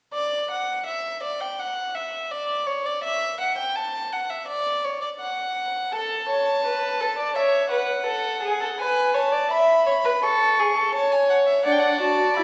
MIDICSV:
0, 0, Header, 1, 4, 480
1, 0, Start_track
1, 0, Tempo, 723764
1, 93, Time_signature, 4, 2, 24, 8
1, 3932, Tempo, 715137
1, 8300, End_track
2, 0, Start_track
2, 0, Title_t, "Violin"
2, 0, Program_c, 0, 40
2, 90, Note_on_c, 0, 74, 79
2, 317, Note_off_c, 0, 74, 0
2, 337, Note_on_c, 0, 78, 71
2, 569, Note_off_c, 0, 78, 0
2, 573, Note_on_c, 0, 76, 70
2, 811, Note_off_c, 0, 76, 0
2, 816, Note_on_c, 0, 74, 68
2, 931, Note_on_c, 0, 79, 68
2, 941, Note_off_c, 0, 74, 0
2, 1052, Note_on_c, 0, 78, 72
2, 1062, Note_off_c, 0, 79, 0
2, 1293, Note_on_c, 0, 76, 64
2, 1302, Note_off_c, 0, 78, 0
2, 1533, Note_on_c, 0, 74, 69
2, 1543, Note_off_c, 0, 76, 0
2, 1769, Note_on_c, 0, 73, 70
2, 1779, Note_off_c, 0, 74, 0
2, 1894, Note_on_c, 0, 74, 68
2, 1904, Note_off_c, 0, 73, 0
2, 2010, Note_off_c, 0, 74, 0
2, 2014, Note_on_c, 0, 76, 82
2, 2249, Note_off_c, 0, 76, 0
2, 2257, Note_on_c, 0, 78, 69
2, 2368, Note_off_c, 0, 78, 0
2, 2372, Note_on_c, 0, 79, 73
2, 2490, Note_on_c, 0, 81, 80
2, 2500, Note_off_c, 0, 79, 0
2, 2734, Note_on_c, 0, 78, 71
2, 2744, Note_off_c, 0, 81, 0
2, 2850, Note_on_c, 0, 76, 61
2, 2860, Note_off_c, 0, 78, 0
2, 2966, Note_off_c, 0, 76, 0
2, 2970, Note_on_c, 0, 74, 82
2, 3214, Note_on_c, 0, 73, 68
2, 3224, Note_off_c, 0, 74, 0
2, 3323, Note_off_c, 0, 73, 0
2, 3327, Note_on_c, 0, 74, 63
2, 3377, Note_off_c, 0, 74, 0
2, 3448, Note_on_c, 0, 78, 71
2, 3929, Note_on_c, 0, 81, 79
2, 3939, Note_off_c, 0, 78, 0
2, 4887, Note_on_c, 0, 76, 66
2, 4897, Note_off_c, 0, 81, 0
2, 5127, Note_off_c, 0, 76, 0
2, 5131, Note_on_c, 0, 78, 59
2, 5852, Note_on_c, 0, 80, 71
2, 5863, Note_off_c, 0, 78, 0
2, 6086, Note_off_c, 0, 80, 0
2, 6090, Note_on_c, 0, 81, 66
2, 6332, Note_on_c, 0, 83, 69
2, 6342, Note_off_c, 0, 81, 0
2, 6816, Note_on_c, 0, 85, 69
2, 6826, Note_off_c, 0, 83, 0
2, 7295, Note_off_c, 0, 85, 0
2, 7300, Note_on_c, 0, 81, 65
2, 7414, Note_on_c, 0, 80, 59
2, 7424, Note_off_c, 0, 81, 0
2, 7531, Note_off_c, 0, 80, 0
2, 7535, Note_on_c, 0, 78, 69
2, 7583, Note_off_c, 0, 78, 0
2, 7654, Note_on_c, 0, 76, 61
2, 7766, Note_off_c, 0, 76, 0
2, 7770, Note_on_c, 0, 78, 80
2, 7818, Note_on_c, 0, 79, 65
2, 7828, Note_off_c, 0, 78, 0
2, 7863, Note_on_c, 0, 78, 75
2, 7873, Note_off_c, 0, 79, 0
2, 8007, Note_off_c, 0, 78, 0
2, 8011, Note_on_c, 0, 81, 73
2, 8246, Note_off_c, 0, 81, 0
2, 8250, Note_on_c, 0, 83, 77
2, 8300, Note_off_c, 0, 83, 0
2, 8300, End_track
3, 0, Start_track
3, 0, Title_t, "Violin"
3, 0, Program_c, 1, 40
3, 3931, Note_on_c, 1, 69, 81
3, 4155, Note_off_c, 1, 69, 0
3, 4171, Note_on_c, 1, 73, 68
3, 4406, Note_off_c, 1, 73, 0
3, 4417, Note_on_c, 1, 71, 79
3, 4656, Note_on_c, 1, 69, 75
3, 4666, Note_off_c, 1, 71, 0
3, 4769, Note_off_c, 1, 69, 0
3, 4773, Note_on_c, 1, 74, 75
3, 4883, Note_off_c, 1, 74, 0
3, 4887, Note_on_c, 1, 73, 94
3, 5123, Note_off_c, 1, 73, 0
3, 5127, Note_on_c, 1, 71, 71
3, 5358, Note_off_c, 1, 71, 0
3, 5362, Note_on_c, 1, 69, 77
3, 5602, Note_off_c, 1, 69, 0
3, 5608, Note_on_c, 1, 68, 77
3, 5727, Note_off_c, 1, 68, 0
3, 5730, Note_on_c, 1, 69, 70
3, 5778, Note_off_c, 1, 69, 0
3, 5847, Note_on_c, 1, 71, 96
3, 6089, Note_on_c, 1, 73, 79
3, 6099, Note_off_c, 1, 71, 0
3, 6208, Note_on_c, 1, 74, 66
3, 6218, Note_off_c, 1, 73, 0
3, 6327, Note_off_c, 1, 74, 0
3, 6331, Note_on_c, 1, 76, 82
3, 6568, Note_off_c, 1, 76, 0
3, 6573, Note_on_c, 1, 73, 80
3, 6621, Note_off_c, 1, 73, 0
3, 6695, Note_on_c, 1, 71, 82
3, 6743, Note_off_c, 1, 71, 0
3, 6818, Note_on_c, 1, 69, 93
3, 7064, Note_on_c, 1, 68, 73
3, 7074, Note_off_c, 1, 69, 0
3, 7176, Note_off_c, 1, 68, 0
3, 7180, Note_on_c, 1, 69, 70
3, 7294, Note_off_c, 1, 69, 0
3, 7299, Note_on_c, 1, 73, 89
3, 7766, Note_off_c, 1, 73, 0
3, 7777, Note_on_c, 1, 74, 86
3, 8300, Note_off_c, 1, 74, 0
3, 8300, End_track
4, 0, Start_track
4, 0, Title_t, "Viola"
4, 0, Program_c, 2, 41
4, 7776, Note_on_c, 2, 62, 84
4, 7997, Note_off_c, 2, 62, 0
4, 8010, Note_on_c, 2, 66, 90
4, 8250, Note_on_c, 2, 64, 79
4, 8260, Note_off_c, 2, 66, 0
4, 8300, Note_off_c, 2, 64, 0
4, 8300, End_track
0, 0, End_of_file